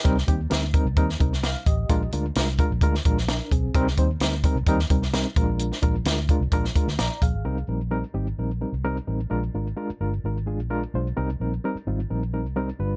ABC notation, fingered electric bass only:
X:1
M:4/4
L:1/16
Q:1/4=130
K:Cm
V:1 name="Fingered electric bass" clef=bass
C,,2 E,,2 D,,3 C,, E,,2 C,,4 =A,,,2 | B,,,2 D,,2 C,,3 B,,, D,,2 B,,,4 =B,,,2 | C,,2 E,,2 D,,3 C,, E,,2 C,,4 B,,,2- | B,,,2 B,,,2 D,,3 C,, B,,,2 z D,, B,,, z B,,, A,,, |
C,,2 B,,,4 A,,,2 B,,,3 C,,3 =A,,,2 | B,,,2 A,,,2 z2 G,,,2 A,,,3 B,,,3 =B,,,2 | C,,2 B,,,2 z2 A,,,2 B,,,3 C,,3 G,,,2 |]